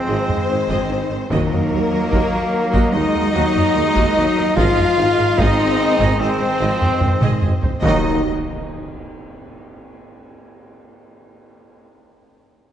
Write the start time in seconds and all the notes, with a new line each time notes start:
Already playing: D#3 F3 G#3 C4 D#4 G#4 C5 D#5
0.07 G#1 G#4 D#5
0.28 G#1 G#4 D#5, taiko low-mid
0.47 G#1 D#3 D#4 C5
0.69 G#1 G#4 D#5, taiko
0.89 G#1 G#4 D#5
1.10 G#1 D#4 C5
1.29 D#2 D#3 F#3 A#3 D#4 F#4 A#4 D#5, taiko
1.51 D#2 F#4 D#5, taiko low-mid
1.70 D#2 D#4 A#4
1.92 D#2 F#4 D#5
2.11 D#2 F#4 D#5, taiko
2.32 D#2 F#4 D#5
2.72 D#2 F#4 D#5, taiko
2.93 D#2 G#3 D#4 F#4 D#5
3.14 D#2 D#4 A#4
3.33 D#2 F#3 F#4 D#5
3.55 D#2 F#4 D#5, taiko low-mid
3.74 D#2 G#3 D#4 A#4
3.95 D#2 F#4 D#5, taiko
4.15 D#2 F#3 F#4 D#5
4.36 D#2 D#4 A#4
4.55 G#1 D#3 F3 G#3 D#4 F4 G#4 D#5 F5, taiko
4.59 G#4
4.76 G#1 G#4 D#5, taiko low-mid
4.97 G#1 D#3 D#4 C5
5.18 G#1 G#4 D#5
5.37 G#1 C4 D#4 G#4 D#5, taiko
5.59 G#1 G#4 D#5, taiko rim
6.00 G#1 G#4 D#5, taiko
6.19 G#1 G#3 C4 G#4 C5 D#5
6.40 G#1 D#4 C5
6.60 G#1 F3 G#4 D#5
6.81 G#1 G#4 D#5, taiko low-mid
7.01 G#1 D#3 D#4 C5, taiko low-mid
7.22 G#1 G#4 D#5, taiko mid
7.42 G#1 G#4 D#5, taiko low-mid
7.63 G#1 D#4 C5, taiko low
7.82 D#2 D#3 F#3 A#3 D#4 F#4 D#5, impact